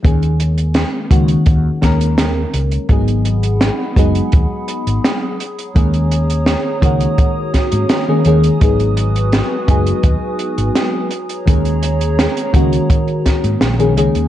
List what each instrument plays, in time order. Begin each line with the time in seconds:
0.03 fretless electric bass D#2, fm electric piano D#3 G#3 A#3 C#4 G#4, kick, closed hi-hat
0.23 closed hi-hat
0.40 closed hi-hat
0.58 closed hi-hat
0.74 snare, closed hi-hat
1.10 fretless electric bass C#2, fm electric piano D#3 G#3 A#3 C#4 F#4, kick, closed hi-hat
1.29 closed hi-hat
1.46 fretless electric bass D#2, kick, closed hi-hat
1.82 fretless electric bass D#2, fm electric piano D#3 G#3 A#3 C#4 A#4, kick, snare, closed hi-hat
2.01 closed hi-hat
2.18 snare, closed hi-hat
2.54 fretless electric bass C#2, closed hi-hat
2.72 closed hi-hat
2.88 fretless electric bass G#1, fm electric piano F#3 G#3 B3 D#4 G#4, ambient pad G#4 F#5 B5 D#6, kick, closed hi-hat
3.08 closed hi-hat
3.25 closed hi-hat
3.43 closed hi-hat
3.61 snare, closed hi-hat
3.96 fretless electric bass F#1, fm electric piano F#3 G#3 B3 D#4 G#4, kick, closed hi-hat
4.15 closed hi-hat
4.32 fretless electric bass D#2, kick, closed hi-hat
4.68 closed hi-hat
4.87 fretless electric bass G#1, closed hi-hat
5.04 snare, closed hi-hat
5.40 ambient pad C#5 A#5, closed hi-hat
5.59 closed hi-hat
5.75 fretless electric bass D#2, fm electric piano D#3 G#3 A#3 C#4 G#4, kick, closed hi-hat
5.94 closed hi-hat
6.12 closed hi-hat
6.30 closed hi-hat
6.46 snare, closed hi-hat
6.81 fretless electric bass C#2, fm electric piano D#3 G#3 A#3 C#4 F#4, kick, closed hi-hat
7.00 closed hi-hat
7.18 kick, closed hi-hat
7.54 kick, snare, closed hi-hat
7.72 fretless electric bass G#2, closed hi-hat
7.89 snare, closed hi-hat
8.08 fm electric piano D#3 G#3 A#3 C#4 G#4
8.24 fretless electric bass D#2, fm electric piano D#3 G#3 A#3 C#4 G#4, closed hi-hat
8.43 closed hi-hat
8.60 fretless electric bass G#1, fm electric piano F#3 G#3 B3 D#4 G#4, ambient pad F#4 B4 G#5, kick, closed hi-hat
8.80 closed hi-hat
8.97 closed hi-hat
9.16 closed hi-hat
9.33 snare, closed hi-hat
9.67 fretless electric bass F#1, fm electric piano F#3 G#3 B3 D#4 G#4, kick, closed hi-hat
9.86 closed hi-hat
10.03 fretless electric bass D#2, kick, closed hi-hat
10.39 closed hi-hat
10.58 fretless electric bass G#1, closed hi-hat
10.76 snare, closed hi-hat
11.10 ambient pad G#4 C#5 A#5, closed hi-hat
11.29 closed hi-hat
11.46 fretless electric bass D#2, fm electric piano D#3 G#3 A#3 C#4 G#4, kick, closed hi-hat
11.65 closed hi-hat
11.83 closed hi-hat
12.01 closed hi-hat
12.19 snare, closed hi-hat
12.37 closed hi-hat
12.53 fretless electric bass C#2, fm electric piano D#3 G#3 A#3 C#4 F#4, kick, closed hi-hat
12.73 closed hi-hat
12.90 kick, closed hi-hat
13.07 closed hi-hat
13.26 kick, snare, closed hi-hat
13.44 fretless electric bass G#2, closed hi-hat
13.61 fretless electric bass A#1, snare, closed hi-hat
13.79 fm electric piano D#3 G#3 A#3 C#4 G#4, closed hi-hat
13.97 fretless electric bass C#2, fm electric piano D#3 G#3 A#3 C#4 G#4, closed hi-hat
14.15 fretless electric bass D#2, closed hi-hat